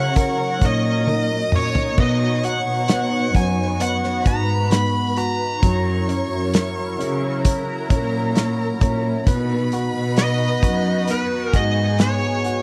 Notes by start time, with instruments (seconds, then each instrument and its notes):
Already playing: cello section C#3, grand piano F#3 C#4 A#4, analog synth pad F#3 E4 A#4, violin section C#5 C#6, lead electric guitar F#5
0.16 analog synth pad D#4, grand piano A#4, kick, closed hi-hat
0.61 cello section A#2, grand piano C#4, kick, closed hi-hat
0.66 lead electric guitar D#5
1.07 grand piano A#4, violin section D#5 D#6, high tom
1.52 cello section A#2, grand piano C#4, lead electric guitar C#5, mid tom
1.75 floor tom
1.97 cello section B2, analog synth pad B3 F#4, grand piano B3, violin section C#5 C#6, lead electric guitar D#5, kick, crash
2.43 grand piano F#4, lead electric guitar F#5, closed hi-hat
2.67 cello section B2
2.88 grand piano B3, snare, closed hi-hat
3.35 cello section F#2, grand piano F#4, lead electric guitar G#5, kick, closed hi-hat
3.80 grand piano B3, lead electric guitar F#5, closed hi-hat
4.04 snare
4.24 cello section G#2, grand piano F#4, violin section B4 B5, lead electric guitar A#5, kick, closed hi-hat
4.70 grand piano B3, lead electric guitar B5, snare, closed hi-hat
5.17 grand piano F#4, lead electric guitar A#5, closed hi-hat
5.62 cello section F#2, grand piano F#3, analog synth pad F#3 E4 A#4, violin section C#5 C#6, kick, closed hi-hat
6.09 grand piano C#4, closed hi-hat
6.31 cello section F#2
6.54 grand piano A#4, snare, closed hi-hat
6.99 cello section C#3, grand piano C#4, closed hi-hat
7.45 violin section A#4 A#5, grand piano C#5, kick, closed hi-hat
7.89 cello section A#2, grand piano C#4, kick, closed hi-hat
8.35 grand piano C#5, snare, closed hi-hat
8.81 cello section A#2, grand piano C#4, kick, closed hi-hat
9.26 cello section B2, analog synth pad B3 D#4 F#4, grand piano B3, violin section B4 B5, kick, closed hi-hat
9.72 grand piano F#4, closed hi-hat
9.94 cello section B2
10.16 grand piano B3, lead electric guitar D#5, snare, closed hi-hat
10.63 cello section F#2, grand piano F#4, kick, closed hi-hat
11.08 grand piano B3, lead electric guitar B4, closed hi-hat
11.45 lead electric guitar A#4
11.53 cello section G#2, grand piano F#4, violin section G#4 G#5, lead electric guitar D#5, kick, closed hi-hat
11.98 grand piano B3, lead electric guitar C#5, snare, closed hi-hat
12.44 grand piano F#4, closed hi-hat